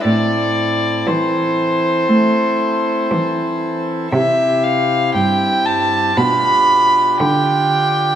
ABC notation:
X:1
M:4/4
L:1/16
Q:1/4=59
K:Am
V:1 name="Violin"
d4 c8- c3 z | e2 f2 g2 a2 b4 g4 |]
V:2 name="Pipe organ"
[CEA]16 | [CEG]8 [DFG]8 |]
V:3 name="Pipe organ" clef=bass
A,,4 E,4 A,4 E,4 | C,4 G,,4 B,,4 D,4 |]
V:4 name="Cello" clef=bass
A,,4 E,4 A,4 E,4 | C,4 G,,4 B,,4 D,4 |]